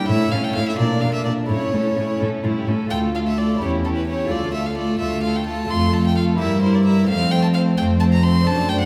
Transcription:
0.05 cello section A2, lute C#4 E4 A4, violin section E4, violin E5
0.09 lute A2, viola section A3, violin section C#5
0.32 cello section A2, lute A2, violin section C#4 A4, viola section C#4, violin F5
0.44 violin G5
0.55 lute A2, cello section A2, viola section A3, violin section E4 C#5, violin F5
0.68 violin E5
0.73 lute D4 F4
0.78 lute A#2, cello section A#2, viola section A#3, violin section D4 A#4, violin D5
1.01 lute A#2, cello section A#2, violin section A#3 F4, viola section D4, violin F5
1.14 violin E5
1.25 lute A#2, cello section A#2, viola section A#3, violin section D4 A#4, violin D5
1.44 lute A3 E4 A4
1.48 lute A2, cello section A2, viola section C#4, violin section E4 C#5, violin C#5
1.72 lute A2, cello section A2, viola section A3, violin section C#4 A4
1.96 lute A2, cello section A2, viola section C#4, violin section E4 C#5
2.20 lute A2, cello section A2, viola section A3, violin section C#4 A4
2.44 cello section A2, lute A2, viola section C#4, violin section E4 F4
2.57 violin section G4
2.67 cello section A2, lute A2, viola section A3, violin section C#4 A4
2.87 lute A3 F4 A4
2.91 lute D2, cello section D2, viola section A3, violin section F4 A4, violin G5
3.15 viola section A3, violin section F4 A4, violin F5
3.27 violin E5
3.37 viola section A3, violin section F4 A4, violin D5
3.56 lute C#4 E4 G4
3.60 lute E2, cello section E2, viola section C#4, violin section E4 G4, violin C#5
3.83 viola section C#4, violin section E4 G4, violin A4
3.97 violin B4
4.07 viola section C#4, violin section E4 G4, violin C#5
4.25 lute A3 F4 A4
4.30 lute D2, cello section D2, viola section A3, violin section F4 A4, violin D5
4.53 viola section A3, violin section F4 A4, violin E5
4.66 violin F5
4.76 viola section A3, violin section F4 A4, violin D5
4.99 cello section D2, lute D2, viola section A3, violin section F4 A4, violin E5
5.23 viola section A3, violin section F4 A4, violin F5
5.36 violin G5
5.46 viola section A3, violin section F4 A4, violin A5
5.64 lute A3 F4 A4
5.69 cello section F2, lute F2, viola section A3, violin section F4 A4, violin C6
5.92 viola section A3, violin section F4 A4, violin A5
6.06 violin G5
6.16 viola section A3, violin section F4 A4, violin F5
6.34 cello section G2, lute A#3 E4 G4
6.38 lute G2, viola section G3, violin section E4 A#4, violin E5
6.62 viola section G3, violin section E4 A#4, violin C5
6.75 violin D5
6.85 viola section G3, violin section E4 A#4, violin E5
7.04 lute C4 A4
7.08 cello section F2, lute F2, viola section A3, violin section C4 C5, violin F5
7.31 viola section A3, violin section C4 C5, violin G5
7.43 violin A5
7.54 viola section A3, violin section C4 C5, violin F5
7.76 lute F2, cello section F2, viola section A3, violin section C4 C5, violin G5
8.00 viola section A3, violin section C4 C5, violin A5
8.13 violin A#5
8.23 viola section A3, violin section C4 C5, violin C6
8.41 lute C4 D4 A4
8.46 lute F#2, cello section F#2, viola section A3, violin section D4 C5, violin A5
8.68 viola section A3, violin section D4 C5, violin G5
8.81 violin F#5

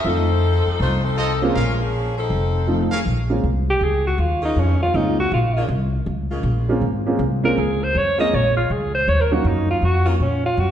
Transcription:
0.05 upright bass F2, upright piano F3 A3 C4 D#4 F4, saxophone section F3 C4 D#4 A4
0.67 muted upright bass stroke
0.80 upright bass C2, saxophone section A3 D#4 F4 C5
1.04 saxophone section F3 C4 D#4 A4
1.17 saxophone section F3 C4 D#4 A4, trumpet section F4 A4 C5 D#5
1.42 upright piano G#3 A#3 C4 C#4 F4, saxophone section G#3 C#4 F4 A#4
1.55 upright bass A#1, trumpet section G#4 A#4 C#5 F5
1.79 saxophone section F3 A#3 C#4 G#4
2.17 saxophone section F3 C4 D#4 A4
2.30 upright bass F1
2.67 upright piano F3 A3 C4 D#4 F4
2.92 trumpet section G#4 A#4 C#5 F5, muted upright bass stroke
3.06 upright bass A#1
3.30 upright piano G#3 A#3 C4 C#4 F4
3.44 upright bass C2
3.70 alto saxophone G4
3.81 upright bass C#2, alto saxophone G#4
4.07 alto saxophone F#4
4.18 upright bass D#2, alto saxophone F4
4.42 saxophone section C#3 G#3 A#3 F4, alto saxophone D#4
4.56 upright bass F2, alto saxophone C#4
4.81 alto saxophone F4, muted upright bass stroke
4.93 upright bass C#2, saxophone section C#3 G#3 A#3 F4, upright piano G#3 A#3 C4 C#4 F4, alto saxophone D#4
5.20 alto saxophone F#4
5.32 upright bass A#1, alto saxophone F4
5.57 saxophone section C#3 G#3 A#3 F4
5.68 upright bass C2
6.06 upright bass C#2
6.30 saxophone section C#3 G#3 A#3 F4
6.43 upright bass A#1
6.69 upright piano G#3 A#3 C4 C#4 F4
6.81 upright bass G#1
7.06 upright piano G#3 A#3 C4 C#4 F4
7.19 upright bass C2
7.43 upright piano G#3 A#3 C4 C#4 F4, alto saxophone A#4
7.58 upright bass C#2, alto saxophone G#4
7.83 alto saxophone C5
7.95 upright bass F2, alto saxophone C#5
8.18 saxophone section C#3 G#3 A#3 F4, upright piano G#3 A#3 C4 C#4 F4, alto saxophone D#5
8.33 upright bass A#1, alto saxophone C#5
8.57 alto saxophone F4
8.70 upright bass C#2, alto saxophone G#4
8.95 alto saxophone C5
9.08 upright bass D#2, alto saxophone C#5
9.21 alto saxophone A#4
9.31 upright piano F#3 A#3 C#4 D#4 F4, alto saxophone F#4
9.44 upright bass F#2, alto saxophone D#4
9.71 alto saxophone F4
9.82 upright bass F2, alto saxophone F#4
10.05 saxophone section D#3 F#3 C#4 F4
10.09 alto saxophone A#3
10.20 upright bass A#2, alto saxophone C#4
10.46 alto saxophone F4
10.57 upright bass F#2, alto saxophone F#4

